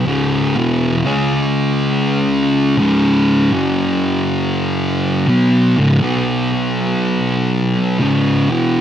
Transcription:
0.06 C#2 G#2 C#3
0.56 E2 B2 E3
1.05 C#3 G#3 C#4
2.78 C#2 G#2 C#3
3.52 F#2 C#3 F#3
5.28 B2 F#3 B3
5.77 C#2 G#2
6.02 B2 F#3 B3
8.00 C#2 G#2 C#3
8.49 E2 B2 E3

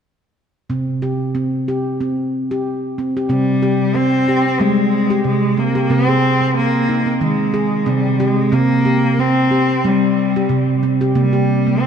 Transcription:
0.70 C3 C4
1.02 G4
1.35 C4
1.68 G4
2.01 C4
2.51 G4
2.98 C4
3.17 G4
3.29 C3 G3 C4
3.62 G4
3.95 C4
4.28 G4
4.60 G3 G#3 C4
5.10 G4
5.24 C3 G#3
5.57 A#3 C4
5.75 G4
5.90 C3 C4
6.09 G#4
6.41 C4
6.56 A#3
6.89 D#4
7.06 C4
7.21 D#3 G#3
7.54 G#4
7.86 C3 G3 C4
8.20 G#3 G4
8.52 C3 A#3 C4
8.85 G4
9.19 C4
9.51 G4
9.84 G3 C4
10.36 G4
10.49 C3
10.83 C4
11.01 G4
11.15 C3 G3 A#3
11.33 G4
11.67 A#3
11.81 C4

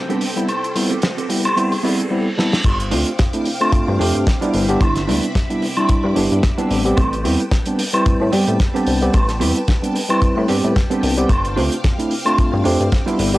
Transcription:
Already playing: C4 A4 G5 B5, riser
0.09 G3 B3 C4 D4 G4 A4 B4, closed hi-hat
0.21 open hi-hat
0.36 G3 B3 C4 E4, closed hi-hat
0.49 closed hi-hat, high woodblock
0.64 closed hi-hat
0.75 G3 B3 C4 E4, open hi-hat
0.90 C4 G4 A4 B4, closed hi-hat
1.02 snare, closed hi-hat
1.17 C4 G4 A4 B4, closed hi-hat
1.29 G3 B3 C4 E4, open hi-hat
1.45 closed hi-hat, high woodblock
1.56 G3 B3 C4 E4, muted clean electric guitar stroke, closed hi-hat, reverse cymbal
1.71 muted clean electric guitar stroke, open hi-hat
1.83 G3 B3 C4 E4 G4 A4 B4 D5, open hi-hat
1.99 closed hi-hat
2.10 G3 B3 C4 E4 C5
2.38 G3 B3 C4 E4 A5, snare
2.53 snare
2.64 G1 C4 F5 G5 D6, kick, closed hi-hat, crash, high woodblock
2.80 closed hi-hat
2.91 D2 A3 C4 D4 F4 G4 C5, open hi-hat
3.07 closed hi-hat
3.19 muted clean electric guitar stroke, kick, snare, closed hi-hat
3.33 A3 C4 D4 E4, closed hi-hat
3.45 muted clean electric guitar stroke, open hi-hat
3.61 A3 C4 D4 F4, closed hi-hat, high woodblock
3.73 G2, kick, closed hi-hat
3.87 G2, muted clean electric guitar stroke
3.99 F2 A3 C4 D4 F4 G4 C5, open hi-hat
4.15 G2, closed hi-hat
4.27 kick, snare, closed hi-hat
4.41 G3 B3 D4 E4 F4 G4 D5, closed hi-hat
4.53 G1 D4 E4 B4 C5 E5 B5 D6, open hi-hat
4.69 G3 B3 D4 G4, closed hi-hat
4.81 G1, kick, closed hi-hat, high woodblock
4.96 snare, closed hi-hat
5.07 D2 G3 B3 D4 E4 B4 D5, open hi-hat
5.23 closed hi-hat
5.35 muted clean electric guitar stroke, kick, snare, closed hi-hat
5.50 G3 B3 D4 E4, closed hi-hat
5.62 muted clean electric guitar stroke, open hi-hat
5.77 G3 D4 E4, closed hi-hat, high woodblock
5.89 kick, closed hi-hat
6.04 G2, muted clean electric guitar stroke
6.16 G1 G3 B3 D4 E4 G4 B4 C5, open hi-hat
6.32 G2, closed hi-hat
6.43 kick, snare, closed hi-hat
6.58 G3 B3 C4 D4 E4 B4 C5, closed hi-hat
6.70 A1 C4 G4 A4 B4 G5 A5, open hi-hat
6.85 G3 B3 C4 G4, closed hi-hat
6.97 A1, kick, closed hi-hat, high woodblock
7.13 closed hi-hat
7.24 E2 G3 B3 C4 E4 G4 A4 B4, open hi-hat
7.40 closed hi-hat
7.51 muted clean electric guitar stroke, kick, snare, closed hi-hat
7.65 G3 B3 C4 D4, closed hi-hat
7.78 muted clean electric guitar stroke, open hi-hat
7.93 G3 C4 E4 B4, closed hi-hat, high woodblock
8.06 A2, kick, closed hi-hat
8.20 A2, muted clean electric guitar stroke
8.32 G2 G3 B3 C4 G4 A4 B4, open hi-hat
8.48 A2, closed hi-hat
8.60 kick, snare, closed hi-hat
8.74 G3 B3 C4 D4 G4 A4 B4, closed hi-hat
8.87 C2, open hi-hat
9.01 G3 B3 C4 G4, muted clean electric guitar stroke, closed hi-hat
9.14 A1, kick, closed hi-hat, high woodblock
9.29 snare, closed hi-hat
9.40 E2 G3 B3 C4 E4 G4 A4 B4, open hi-hat
9.56 closed hi-hat
9.67 muted clean electric guitar stroke, kick, snare, closed hi-hat
9.82 G3 B3 C4 D4, closed hi-hat
9.94 muted clean electric guitar stroke, open hi-hat
10.09 G3 C4 E4 B4, closed hi-hat, high woodblock
10.22 kick, closed hi-hat
10.36 A2, muted clean electric guitar stroke
10.48 G2 G3 B3 C4 G4 A4 B4, open hi-hat
10.64 A2, closed hi-hat
10.76 kick, snare, closed hi-hat
10.90 G3 B3 C4 D4 G4 A4 B4, closed hi-hat
11.03 C2, open hi-hat
11.17 G3 B3 C4 G4, muted clean electric guitar stroke, closed hi-hat
11.29 G1 C4 F5 D6, kick, closed hi-hat, high woodblock
11.45 closed hi-hat
11.56 D2 A3 C4 D4 F4 G4 C5, open hi-hat
11.72 closed hi-hat
11.83 muted clean electric guitar stroke, kick, snare, closed hi-hat
11.98 A3 C4 D4 E4, closed hi-hat
12.10 muted clean electric guitar stroke, open hi-hat
12.25 A3 C4 D4 F4, closed hi-hat, high woodblock
12.38 G2, kick, closed hi-hat
12.52 G2, muted clean electric guitar stroke
12.64 F2 A3 C4 D4 F4 G4 C5, open hi-hat
12.80 G2, closed hi-hat
12.92 kick, snare, closed hi-hat
13.06 G3 B3 D4 E4 F4 G4 C5, closed hi-hat
13.18 G1 D4 E4 B4 C5 E5 B5, open hi-hat
13.34 G3 B3 D4 G4, closed hi-hat

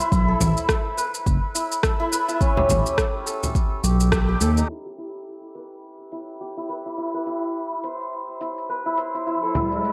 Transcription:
Already playing: G4 C5
0.00 E4, shaker
0.12 B1 E4, kick, shaker
0.28 A4
0.40 A1 E4, frame drum, shaker
0.57 shaker
0.69 kick, cross-stick, shaker
0.97 B4, shaker
1.14 shaker
1.26 F#1, kick, shaker
1.55 E4, shaker
1.72 shaker
1.83 A4, kick, cross-stick, shaker
2.00 E4
2.12 B4, shaker
2.28 E4, shaker
2.40 C#4, kick, shaker
2.57 G4, frame drum
2.69 A1 C#4, frame drum, shaker
2.86 shaker
2.98 kick, cross-stick, shaker
3.26 A4, shaker
3.43 frame drum, shaker
3.55 kick, shaker
3.83 B1 G4, shaker
4.00 shaker
4.12 G4, kick, cross-stick, shaker
4.29 G4
4.41 D#2 A4, shaker
4.57 D#4, shaker
4.69 E4
4.86 G4
4.98 E4, closed hi-hat, shaker
5.27 shaker
5.55 B4, closed hi-hat, shaker
5.72 shaker
5.84 shaker
6.12 E4, closed hi-hat, shaker
6.29 shaker
6.41 G4, shaker
6.57 E4
6.69 B4, closed hi-hat, shaker
6.86 E4, shaker
6.98 E4, shaker
7.14 B4
7.26 E4, closed hi-hat, shaker
7.43 shaker
7.55 shaker
7.84 C5, closed hi-hat, shaker
8.01 shaker
8.13 shaker
8.41 E4, closed hi-hat, shaker
8.58 shaker
8.69 B4, shaker
8.86 E4
8.98 C5, closed hi-hat, shaker
9.14 E4, shaker
9.26 E4, riser, shaker
9.43 A4
9.55 E4, closed hi-hat, frame drum, shaker
9.72 shaker
9.84 shaker

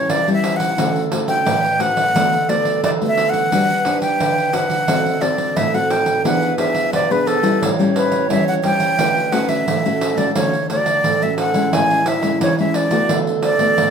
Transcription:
Already playing: G3 C#4 E4 B4 C#5
0.10 E3 D5, pandeiro
0.28 G3 C#4 E4, pandeiro
0.33 E5
0.44 pandeiro
0.56 F#5, pandeiro
0.78 D3 A3 C#4 F#4 A4, pandeiro
0.96 pandeiro
1.12 A3 C#4 F#4, pandeiro
1.28 G5, pandeiro
1.46 A2 B4, pandeiro
1.64 pandeiro
1.79 A3 C#4 F#4 F#5, pandeiro
1.97 pandeiro
2.15 D3 A3 B3 F#4 A4, pandeiro
2.33 pandeiro
2.49 A3 B3 F#4 D5, pandeiro
2.65 pandeiro
2.83 D3 D5, pandeiro
3.01 A3 B3 F#4, pandeiro
3.07 E5
3.18 pandeiro
3.30 F#5, pandeiro
3.51 G3 D4 F#4 B4, pandeiro
3.69 pandeiro
3.85 D4 B4, pandeiro
4.02 G5, pandeiro
4.20 D3, pandeiro
4.38 pandeiro
4.53 D4 F#4 B4 F#5, pandeiro
4.70 pandeiro
4.88 D3 C4 F#4 A4, pandeiro
5.06 pandeiro
5.21 C4 F#4 A4 D5, pandeiro
5.38 pandeiro
5.57 A2 E5, pandeiro
5.74 C4 F#4 A4 F#5, pandeiro
5.90 G5, pandeiro
6.06 pandeiro
6.24 E3 B3 D4 G#4 B4 F#5, pandeiro
6.42 pandeiro
6.58 B3 D4 G#4 E5, pandeiro
6.75 pandeiro
6.93 B2 B4 D5, pandeiro
7.10 B3 D4 G#4 B4, pandeiro
7.27 A4, pandeiro
7.43 G3 C#4 E4, pandeiro
7.62 A2 C#5, pandeiro
7.79 G3 C#4 E4, pandeiro
7.96 B4, pandeiro
8.12 pandeiro
8.30 E3 G3 C#4 E4 E5, pandeiro
8.48 F#5, pandeiro
8.64 G3 C#4 E4 G5, pandeiro
8.80 pandeiro
8.99 D3 A3 C#4 F#4 B4, pandeiro
9.17 pandeiro
9.32 A3 C#4 F#4 F#5, pandeiro
9.49 E5, pandeiro
9.68 A2 A4, pandeiro
9.85 A3 C#4 F#4, pandeiro
10.01 pandeiro
10.17 A3 C#4 F#4 D5, pandeiro
10.35 D3 A3 C#4 F#4 C#5, pandeiro
10.53 pandeiro
10.70 A3 F#4 D5, pandeiro
10.86 pandeiro
11.04 A2 A4, pandeiro
11.22 A3 C#4 F#4 E5, pandeiro
11.38 F#5, pandeiro
11.54 G#3 C#4 E4, pandeiro
11.73 A2 E4 G#5, pandeiro
11.90 pandeiro
12.06 E5, pandeiro
12.22 G#3 C#4 E4, pandeiro
12.41 E3 C#5, pandeiro
12.59 G#3 C#4 E4 E5, pandeiro
12.74 D5, pandeiro
12.91 A3 B3 F#4, pandeiro
13.09 D3 A4, pandeiro
13.27 pandeiro
13.43 D5, pandeiro
13.59 A3 B3 F#4, pandeiro
13.78 A2, pandeiro

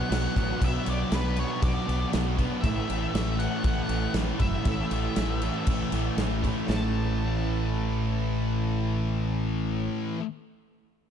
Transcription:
Already playing: B2 F#3 B3 D4 F#4 F#5
0.09 B1 B2 F#3 B3 D4, snare, crash
0.13 F#4
0.34 A1 B2 F#3 B3 D4 F#4, kick, crash
0.40 B3
0.60 B1 B2 F#3 B3 D4 F#4, kick, crash
0.65 E5
0.85 B1 B2 F#3 B3 D4 F#4, crash
0.90 D5
1.11 B1 B2 F#3 B3 D4 F#4 B4, snare, crash
1.36 B2 F#3 B3 D4 F#4 C#5, crash
1.62 B1 B2 F#3 B3 D4 F#4 D5, kick, crash
1.86 B1 B2 F#3 B3 D4 F#4, crash
1.91 B3
2.11 B1 B2 F#3 B3 D4 F#4, snare, crash
2.37 B2 F#3 D4 F#4, kick, crash
2.41 B3
2.61 A1 A2 E3 A3 C#4 E5, kick, crash
2.66 E4
2.87 A1 A2 E3 A3 C#4 E4, crash
3.14 A1 A2 E3 A3 C#4 E4, snare, crash
3.38 A2 E3 A3 C#4 E4 F#5, crash
3.63 A1 A2 E3 A3 C#4 E4 F#5, kick, crash
3.88 A1 A2 E3 A3 C#4 E4, crash
4.13 A1 A2 E3 A3 C#4 E4, snare, crash
4.39 F#1 A2 E3 A3 C#4 E4 E5, kick, crash
4.63 A1 A2 E3 A3 C#4 E4, kick, crash
4.90 A1 A2 E3 A3 C#4 E4, crash
4.95 A3
5.16 A1 A2 E3 A3 C#4 E4, snare, crash
5.40 A2 E3 A3 C#4 E4, crash
5.66 A1 A2 E3 A3 C#4 E4, kick, crash
5.92 A1 A2 E3 A3 C#4 E4, crash
6.17 A1 A2 E3 A3 C#4, snare, crash
6.21 E4
6.42 A2 E3 A3 C#4 E4, kick, crash
6.67 A1 A2 E3 A3 C#4 A5, snare
6.71 E4

